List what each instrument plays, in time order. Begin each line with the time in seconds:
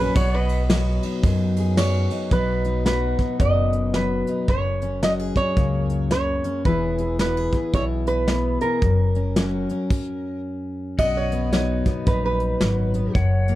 Already playing: steel-string acoustic guitar F#2 F#3 A#3 C#4 G#4, pedal steel guitar F#5
0.00 resonator guitar played with a steel bar B4
0.16 upright bass B1, steel-string acoustic guitar B2, pedal steel guitar C#5 F#5, resonator guitar played with a steel bar C#5, kick, ride
0.34 resonator guitar played with a steel bar B4
0.41 pedal steel guitar D#5
0.49 ride
0.70 steel-string acoustic guitar F#3 B3, snare, ride
1.03 steel-string acoustic guitar D#4, ride
1.23 upright bass F#2, steel-string acoustic guitar F#2, kick, ride
1.56 steel-string acoustic guitar G#4, ride
1.77 steel-string acoustic guitar F#3, resonator guitar played with a steel bar C#5, snare, ride
2.10 steel-string acoustic guitar D#4, ride
2.31 upright bass B1, steel-string acoustic guitar B2 F#3 B3 D#4, resonator guitar played with a steel bar B4, kick, closed hi-hat
2.35 steel-string acoustic guitar F#4
2.65 steel-string acoustic guitar D#4, closed hi-hat
2.86 steel-string acoustic guitar F#3 F#4, resonator guitar played with a steel bar B4, snare, closed hi-hat
3.19 steel-string acoustic guitar D#4, kick, closed hi-hat
3.40 upright bass F#1, steel-string acoustic guitar F#2 B3, resonator guitar played with a steel bar D#5, kick, closed hi-hat
3.73 closed hi-hat
3.94 steel-string acoustic guitar F#3, resonator guitar played with a steel bar B4, snare, closed hi-hat
4.27 steel-string acoustic guitar D#4, closed hi-hat
4.48 upright bass F#1, steel-string acoustic guitar F#2, resonator guitar played with a steel bar C#5, kick, closed hi-hat
4.82 steel-string acoustic guitar C#4, closed hi-hat
5.03 steel-string acoustic guitar F#3 F#4, resonator guitar played with a steel bar D#5, snare, closed hi-hat
5.19 steel-string acoustic guitar G#4
5.36 steel-string acoustic guitar C#4, resonator guitar played with a steel bar C#5, kick, closed hi-hat
5.57 upright bass C#2, steel-string acoustic guitar C#3 A#3, kick, closed hi-hat
5.90 closed hi-hat
6.11 steel-string acoustic guitar F#3, resonator guitar played with a steel bar C#5, snare, closed hi-hat
6.44 steel-string acoustic guitar C#4, closed hi-hat
6.65 upright bass E1, steel-string acoustic guitar E3 B3 E4 G#4, resonator guitar played with a steel bar B4, kick, closed hi-hat
6.99 steel-string acoustic guitar G#4, closed hi-hat
7.19 steel-string acoustic guitar B3 F#4, resonator guitar played with a steel bar B4, snare, closed hi-hat
7.37 steel-string acoustic guitar G#4
7.52 steel-string acoustic guitar G#4, kick, closed hi-hat
7.73 upright bass B1, steel-string acoustic guitar B2 E4, resonator guitar played with a steel bar C#5, kick, closed hi-hat
8.07 resonator guitar played with a steel bar B4, closed hi-hat
8.28 steel-string acoustic guitar B3, snare, closed hi-hat
8.61 steel-string acoustic guitar G#4, resonator guitar played with a steel bar A#4, closed hi-hat
8.82 upright bass F#1, steel-string acoustic guitar F#2, kick, closed hi-hat
9.15 steel-string acoustic guitar C#4, closed hi-hat
9.36 steel-string acoustic guitar F#3 C#4, snare, closed hi-hat
9.69 steel-string acoustic guitar C#4, closed hi-hat
9.90 kick, crash
10.98 upright bass B1, steel-string acoustic guitar B2, pedal steel guitar D#5 F#5, resonator guitar played with a steel bar D#5, kick, crash
11.17 resonator guitar played with a steel bar C#5
11.32 steel-string acoustic guitar B3, closed hi-hat
11.53 steel-string acoustic guitar F#3 D#4, resonator guitar played with a steel bar C#5, snare, closed hi-hat
11.86 steel-string acoustic guitar B3, kick, closed hi-hat
12.06 upright bass A#1, steel-string acoustic guitar F#2 D#4, resonator guitar played with a steel bar B4, kick, closed hi-hat
12.26 resonator guitar played with a steel bar B4
12.40 closed hi-hat
12.61 upright bass G#1, steel-string acoustic guitar F#3, snare, closed hi-hat
12.94 steel-string acoustic guitar B3, closed hi-hat
13.15 upright bass F#1, steel-string acoustic guitar F#2, pedal steel guitar C#5 F#5, kick, closed hi-hat
13.48 steel-string acoustic guitar A#3, closed hi-hat